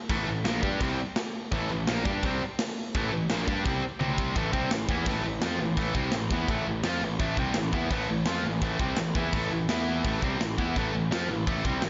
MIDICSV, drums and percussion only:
0, 0, Header, 1, 2, 480
1, 0, Start_track
1, 0, Key_signature, 0, "minor"
1, 0, Tempo, 355450
1, 123, Time_signature, 4, 2, 24, 8
1, 16066, End_track
2, 0, Start_track
2, 0, Title_t, "Drums"
2, 128, Note_on_c, 9, 36, 117
2, 130, Note_on_c, 9, 49, 62
2, 263, Note_off_c, 9, 36, 0
2, 265, Note_off_c, 9, 49, 0
2, 610, Note_on_c, 9, 38, 116
2, 610, Note_on_c, 9, 49, 66
2, 745, Note_off_c, 9, 38, 0
2, 745, Note_off_c, 9, 49, 0
2, 849, Note_on_c, 9, 36, 97
2, 984, Note_off_c, 9, 36, 0
2, 1090, Note_on_c, 9, 36, 106
2, 1092, Note_on_c, 9, 49, 62
2, 1225, Note_off_c, 9, 36, 0
2, 1227, Note_off_c, 9, 49, 0
2, 1567, Note_on_c, 9, 38, 127
2, 1567, Note_on_c, 9, 49, 74
2, 1702, Note_off_c, 9, 38, 0
2, 1702, Note_off_c, 9, 49, 0
2, 2046, Note_on_c, 9, 49, 70
2, 2052, Note_on_c, 9, 36, 102
2, 2181, Note_off_c, 9, 49, 0
2, 2187, Note_off_c, 9, 36, 0
2, 2531, Note_on_c, 9, 38, 114
2, 2531, Note_on_c, 9, 49, 68
2, 2666, Note_off_c, 9, 38, 0
2, 2666, Note_off_c, 9, 49, 0
2, 2774, Note_on_c, 9, 36, 114
2, 2909, Note_off_c, 9, 36, 0
2, 3008, Note_on_c, 9, 49, 73
2, 3015, Note_on_c, 9, 36, 115
2, 3143, Note_off_c, 9, 49, 0
2, 3150, Note_off_c, 9, 36, 0
2, 3496, Note_on_c, 9, 38, 127
2, 3496, Note_on_c, 9, 49, 80
2, 3631, Note_off_c, 9, 38, 0
2, 3631, Note_off_c, 9, 49, 0
2, 3980, Note_on_c, 9, 36, 104
2, 3982, Note_on_c, 9, 49, 66
2, 4115, Note_off_c, 9, 36, 0
2, 4117, Note_off_c, 9, 49, 0
2, 4452, Note_on_c, 9, 38, 121
2, 4452, Note_on_c, 9, 49, 66
2, 4587, Note_off_c, 9, 38, 0
2, 4587, Note_off_c, 9, 49, 0
2, 4695, Note_on_c, 9, 36, 102
2, 4830, Note_off_c, 9, 36, 0
2, 4937, Note_on_c, 9, 36, 110
2, 4942, Note_on_c, 9, 49, 58
2, 5072, Note_off_c, 9, 36, 0
2, 5077, Note_off_c, 9, 49, 0
2, 5413, Note_on_c, 9, 48, 75
2, 5548, Note_off_c, 9, 48, 0
2, 5647, Note_on_c, 9, 36, 94
2, 5782, Note_off_c, 9, 36, 0
2, 5882, Note_on_c, 9, 49, 61
2, 5886, Note_on_c, 9, 36, 109
2, 6017, Note_off_c, 9, 49, 0
2, 6021, Note_off_c, 9, 36, 0
2, 6123, Note_on_c, 9, 36, 105
2, 6258, Note_off_c, 9, 36, 0
2, 6362, Note_on_c, 9, 38, 118
2, 6362, Note_on_c, 9, 49, 69
2, 6497, Note_off_c, 9, 38, 0
2, 6497, Note_off_c, 9, 49, 0
2, 6599, Note_on_c, 9, 36, 106
2, 6734, Note_off_c, 9, 36, 0
2, 6829, Note_on_c, 9, 49, 75
2, 6837, Note_on_c, 9, 36, 119
2, 6964, Note_off_c, 9, 49, 0
2, 6972, Note_off_c, 9, 36, 0
2, 7315, Note_on_c, 9, 38, 127
2, 7315, Note_on_c, 9, 49, 66
2, 7450, Note_off_c, 9, 38, 0
2, 7450, Note_off_c, 9, 49, 0
2, 7793, Note_on_c, 9, 36, 115
2, 7794, Note_on_c, 9, 49, 66
2, 7928, Note_off_c, 9, 36, 0
2, 7929, Note_off_c, 9, 49, 0
2, 8031, Note_on_c, 9, 36, 113
2, 8166, Note_off_c, 9, 36, 0
2, 8261, Note_on_c, 9, 38, 114
2, 8261, Note_on_c, 9, 49, 58
2, 8396, Note_off_c, 9, 38, 0
2, 8396, Note_off_c, 9, 49, 0
2, 8515, Note_on_c, 9, 36, 105
2, 8650, Note_off_c, 9, 36, 0
2, 8756, Note_on_c, 9, 36, 115
2, 8759, Note_on_c, 9, 49, 58
2, 8891, Note_off_c, 9, 36, 0
2, 8894, Note_off_c, 9, 49, 0
2, 9231, Note_on_c, 9, 38, 125
2, 9231, Note_on_c, 9, 49, 74
2, 9366, Note_off_c, 9, 38, 0
2, 9366, Note_off_c, 9, 49, 0
2, 9717, Note_on_c, 9, 49, 70
2, 9718, Note_on_c, 9, 36, 112
2, 9853, Note_off_c, 9, 36, 0
2, 9853, Note_off_c, 9, 49, 0
2, 9955, Note_on_c, 9, 36, 109
2, 10090, Note_off_c, 9, 36, 0
2, 10184, Note_on_c, 9, 38, 118
2, 10184, Note_on_c, 9, 49, 64
2, 10319, Note_off_c, 9, 38, 0
2, 10319, Note_off_c, 9, 49, 0
2, 10437, Note_on_c, 9, 36, 106
2, 10572, Note_off_c, 9, 36, 0
2, 10674, Note_on_c, 9, 49, 71
2, 10677, Note_on_c, 9, 36, 105
2, 10809, Note_off_c, 9, 49, 0
2, 10812, Note_off_c, 9, 36, 0
2, 11149, Note_on_c, 9, 38, 127
2, 11149, Note_on_c, 9, 49, 72
2, 11284, Note_off_c, 9, 38, 0
2, 11284, Note_off_c, 9, 49, 0
2, 11634, Note_on_c, 9, 49, 67
2, 11637, Note_on_c, 9, 36, 115
2, 11769, Note_off_c, 9, 49, 0
2, 11773, Note_off_c, 9, 36, 0
2, 11876, Note_on_c, 9, 36, 114
2, 12011, Note_off_c, 9, 36, 0
2, 12108, Note_on_c, 9, 38, 113
2, 12108, Note_on_c, 9, 49, 60
2, 12243, Note_off_c, 9, 38, 0
2, 12243, Note_off_c, 9, 49, 0
2, 12357, Note_on_c, 9, 36, 106
2, 12492, Note_off_c, 9, 36, 0
2, 12599, Note_on_c, 9, 36, 112
2, 12600, Note_on_c, 9, 49, 65
2, 12734, Note_off_c, 9, 36, 0
2, 12735, Note_off_c, 9, 49, 0
2, 13084, Note_on_c, 9, 38, 125
2, 13084, Note_on_c, 9, 49, 66
2, 13219, Note_off_c, 9, 38, 0
2, 13219, Note_off_c, 9, 49, 0
2, 13566, Note_on_c, 9, 36, 113
2, 13570, Note_on_c, 9, 49, 63
2, 13701, Note_off_c, 9, 36, 0
2, 13705, Note_off_c, 9, 49, 0
2, 13806, Note_on_c, 9, 36, 99
2, 13942, Note_off_c, 9, 36, 0
2, 14055, Note_on_c, 9, 38, 112
2, 14055, Note_on_c, 9, 49, 64
2, 14190, Note_off_c, 9, 38, 0
2, 14190, Note_off_c, 9, 49, 0
2, 14292, Note_on_c, 9, 36, 98
2, 14427, Note_off_c, 9, 36, 0
2, 14532, Note_on_c, 9, 36, 111
2, 14535, Note_on_c, 9, 49, 68
2, 14667, Note_off_c, 9, 36, 0
2, 14670, Note_off_c, 9, 49, 0
2, 15020, Note_on_c, 9, 38, 127
2, 15020, Note_on_c, 9, 49, 69
2, 15155, Note_off_c, 9, 38, 0
2, 15155, Note_off_c, 9, 49, 0
2, 15492, Note_on_c, 9, 36, 118
2, 15497, Note_on_c, 9, 49, 66
2, 15627, Note_off_c, 9, 36, 0
2, 15632, Note_off_c, 9, 49, 0
2, 15731, Note_on_c, 9, 36, 107
2, 15866, Note_off_c, 9, 36, 0
2, 15963, Note_on_c, 9, 38, 108
2, 15963, Note_on_c, 9, 49, 64
2, 16066, Note_off_c, 9, 38, 0
2, 16066, Note_off_c, 9, 49, 0
2, 16066, End_track
0, 0, End_of_file